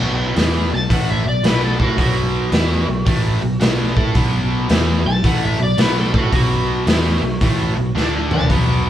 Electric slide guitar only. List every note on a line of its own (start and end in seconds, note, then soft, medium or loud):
0.75 0.91 A5 loud
0.93 1.09 F#5 medium
1.10 1.27 E5 medium
1.29 1.45 D5 medium
1.46 1.63 B4 medium
1.64 1.81 A4 medium
1.83 1.99 F#4 medium
2.01 3.58 F#4 medium
5.07 5.24 A5 medium
5.26 5.42 F#5 medium
5.44 5.61 E5 medium
5.63 5.79 D5 medium
5.81 5.97 B4 medium
5.99 6.15 A4 medium
6.18 6.33 F#4 medium
6.35 7.93 F#4 medium
8.34 8.51 A5 medium